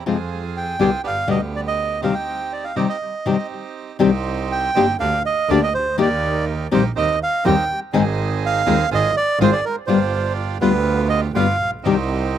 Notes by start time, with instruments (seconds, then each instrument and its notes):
0.06 double bass F2, nylon-string guitar C3 F3 G#3 C4 F4, bandoneon C4 F4 G#4
0.57 bandoneon G5
0.79 double bass C2, nylon-string guitar B2 D3 G3 B3 G4, bandoneon C4 F4 G#4
1.03 double bass G1, bandoneon B3 D4 G4
1.07 bandoneon F5
1.27 double bass D2, nylon-string guitar B2 D3 G3 B3 G4, bandoneon D3 B3 G4 D#5
1.56 bandoneon D5
1.67 bandoneon D#5
2.01 nylon-string guitar C3 D#3 G3 C4 G4, bandoneon C4 D#4 G4 F5
2.14 bandoneon G5
2.53 bandoneon D5
2.64 bandoneon F5
2.75 nylon-string guitar C3 D#3 G3 C4 G4, bandoneon C4 D#4 G4
2.89 bandoneon D#5
3.25 nylon-string guitar C3 D#3 G3 C4 G4, bandoneon C4 D#4 G4
3.99 double bass C2, nylon-string guitar C3 D#3 G3 C4 G4, bandoneon C4 D#4 G4
4.52 bandoneon G5
4.74 double bass G1, nylon-string guitar D3 A#3 D4 G4, bandoneon C4 D#4 G4
4.98 double bass D2, bandoneon A#3 D4 G4 F5
5.26 bandoneon D#5
5.48 double bass D2, nylon-string guitar D3 A#3 D4 G4, bandoneon A#3 D4 G4 D5
5.63 bandoneon D#5
5.74 double bass C#2, bandoneon C5
5.97 double bass D#2, nylon-string guitar D#3 A#3 D#4 G4, bandoneon A#3 D#4 G4
6.02 bandoneon D5
6.71 double bass A#1, nylon-string guitar D#3 G3 C4 G4, bandoneon A#3 D#4 G4 C5
6.96 double bass D#2, bandoneon C4 D#4 G4 D#5
7.23 bandoneon F5
7.44 double bass D#2, nylon-string guitar D#3 G3 C4 G4, bandoneon C4 D#4 G4 G5
7.93 double bass G#1, nylon-string guitar D#3 G#3 C4 D#4 G#4, bandoneon C4 D#4 G#4
8.46 bandoneon F5
8.66 double bass D#2, nylon-string guitar G#3 C4 F4, bandoneon C4 D#4 G#4
8.90 double bass G#1, bandoneon C4 F4 G#4
8.95 bandoneon D#5
9.17 bandoneon D5
9.39 double bass G#1, nylon-string guitar G#3 C4 F4, bandoneon C4 F4 G#4 C5
9.53 bandoneon D5
9.65 bandoneon A#4
9.87 double bass G1, nylon-string guitar G3 B3 F4, bandoneon D4 F4 G4 C5
10.61 double bass D2, nylon-string guitar G3 B3 F4, bandoneon B3 F4 G4 B4
11.09 bandoneon D#5
11.34 double bass G1, nylon-string guitar G3 B3 F4, bandoneon B3 F4 G4 F5
11.58 double bass A#1
11.83 double bass C2, nylon-string guitar C3 D#3 G3 C4 G4, bandoneon C4 D#4 G4